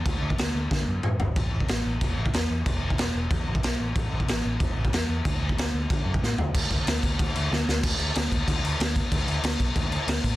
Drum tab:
CC |x---x-----------|x---x---x---x---|x---x---x---x---|x---x---x---x---|
SD |----o---o-------|----o-------o---|----o-------o---|----o-------o---|
T2 |------------o---|----------------|----------------|----------------|
FT |--------------o-|----------------|----------------|----------------|
BD |o--o----o-------|o--o----o--o----|o--o----o--o----|o--o----o--o----|

CC |x---x---x-------|x-x-x-x-x-x-----|x-x-x-x-x-x-x-x-|x-x-x-x-x-x-x-x-|
SD |----o-------o---|----o-------o-o-|----o-------o---|----o-------o---|
T2 |----------------|----------------|----------------|----------------|
FT |--------------o-|----------------|----------------|----------------|
BD |o--o----o--o----|o-o---o-o-------|o-----o-o-----o-|o-----o-o-----o-|